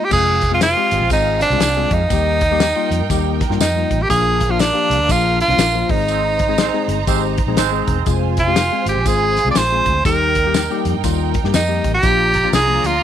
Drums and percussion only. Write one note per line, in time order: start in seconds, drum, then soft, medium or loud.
0.11 kick loud
0.11 crash medium
0.11 tambourine medium
0.41 kick medium
0.41 snare soft
0.41 closed hi-hat medium
0.61 snare loud
0.61 closed hi-hat medium
0.61 tambourine medium
0.91 closed hi-hat medium
1.10 kick loud
1.10 closed hi-hat medium
1.10 tambourine medium
1.41 snare soft
1.41 closed hi-hat medium
1.50 snare soft
1.60 snare loud
1.60 closed hi-hat medium
1.60 tambourine loud
1.91 kick loud
1.91 closed hi-hat medium
2.10 kick loud
2.10 closed hi-hat medium
2.10 tambourine medium
2.41 kick medium
2.41 closed hi-hat medium
2.60 snare loud
2.60 closed hi-hat medium
2.60 tambourine medium
2.91 closed hi-hat medium
3.10 kick loud
3.10 closed hi-hat medium
3.10 tambourine medium
3.41 kick loud
3.41 snare soft
3.41 closed hi-hat medium
3.51 snare soft
3.61 snare loud
3.61 closed hi-hat loud
3.61 tambourine loud
3.91 kick loud
3.91 closed hi-hat medium
4.10 kick loud
4.10 closed hi-hat loud
4.10 tambourine medium
4.41 kick medium
4.41 closed hi-hat medium
4.59 snare medium
4.59 closed hi-hat medium
4.59 tambourine medium
4.91 closed hi-hat medium
5.09 kick loud
5.09 closed hi-hat medium
5.09 tambourine medium
5.41 closed hi-hat medium
5.49 snare soft
5.58 snare loud
5.58 closed hi-hat loud
5.58 tambourine loud
5.89 kick loud
5.89 open hi-hat soft
6.08 closed hi-hat medium
6.08 tambourine medium
6.39 kick medium
6.39 closed hi-hat medium
6.58 snare loud
6.58 closed hi-hat medium
6.58 tambourine medium
6.89 closed hi-hat medium
7.07 kick loud
7.07 closed hi-hat loud
7.07 tambourine medium
7.38 kick loud
7.38 closed hi-hat medium
7.57 snare loud
7.57 closed hi-hat loud
7.57 tambourine loud
7.88 kick medium
7.88 closed hi-hat medium
8.06 kick loud
8.06 closed hi-hat medium
8.06 tambourine medium
8.37 kick medium
8.37 snare soft
8.37 closed hi-hat medium
8.56 snare loud
8.56 closed hi-hat medium
8.56 tambourine medium
8.87 closed hi-hat medium
9.06 kick medium
9.06 closed hi-hat medium
9.06 tambourine medium
9.36 snare soft
9.36 closed hi-hat medium
9.55 snare loud
9.55 closed hi-hat loud
9.55 tambourine loud
9.86 kick medium
9.86 closed hi-hat medium
10.05 kick loud
10.05 closed hi-hat medium
10.05 tambourine medium
10.35 kick medium
10.35 closed hi-hat medium
10.54 snare loud
10.54 closed hi-hat medium
10.54 tambourine medium
10.85 closed hi-hat medium
11.04 kick medium
11.04 closed hi-hat medium
11.04 tambourine medium
11.34 kick loud
11.34 closed hi-hat medium
11.44 snare soft
11.54 snare loud
11.54 closed hi-hat medium
11.54 tambourine loud
11.84 kick medium
11.84 closed hi-hat medium
12.03 kick loud
12.03 closed hi-hat medium
12.03 tambourine medium
12.34 kick medium
12.34 snare soft
12.34 closed hi-hat medium
12.53 snare loud
12.53 closed hi-hat medium
12.53 tambourine medium
12.84 closed hi-hat medium